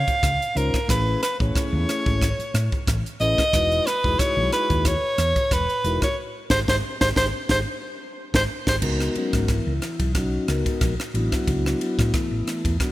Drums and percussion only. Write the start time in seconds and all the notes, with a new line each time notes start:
0.08 kick, closed hi-hat
0.23 kick, cross-stick, closed hi-hat
0.42 closed hi-hat
0.57 closed hi-hat
0.74 kick, cross-stick, closed hi-hat
0.89 kick, cross-stick, closed hi-hat
1.23 cross-stick, closed hi-hat
1.40 kick
1.55 kick, cross-stick, closed hi-hat
1.89 cross-stick, closed hi-hat
2.06 kick
2.21 kick, cross-stick, closed hi-hat
2.40 closed hi-hat
2.55 cross-stick, closed hi-hat
2.72 kick
2.87 kick, cross-stick, closed hi-hat
3.06 closed hi-hat
3.21 closed hi-hat
3.38 kick, cross-stick, closed hi-hat
3.53 kick, cross-stick, closed hi-hat
3.72 closed hi-hat
3.87 cross-stick, closed hi-hat
4.04 kick
4.19 kick, cross-stick, closed hi-hat
4.52 cross-stick, closed hi-hat
4.70 kick, closed hi-hat
4.85 kick, cross-stick, closed hi-hat
5.18 cross-stick, closed hi-hat
5.36 kick, closed hi-hat
5.51 kick, cross-stick, closed hi-hat
5.70 closed hi-hat
5.85 closed hi-hat
6.02 kick, cross-stick, closed hi-hat
6.50 kick, snare
6.68 kick, snare
7.01 kick, snare
7.16 kick, snare
7.49 kick, snare
8.34 kick, snare
8.67 kick, snare
8.82 kick, crash
9.01 cross-stick
9.15 ride
9.33 kick, cross-stick, ride
9.48 kick, cross-stick, ride
9.82 cross-stick, ride
10.00 kick, ride
10.15 kick, cross-stick, ride
10.48 cross-stick, ride
10.66 kick, ride
10.81 kick, cross-stick, ride
11.00 cross-stick
11.15 ride
11.32 kick, cross-stick, ride
11.48 kick, ride
11.66 cross-stick
11.81 ride
11.99 kick, cross-stick, ride
12.14 kick, cross-stick, ride
12.47 cross-stick, ride
12.65 kick, ride
12.80 kick, cross-stick, ride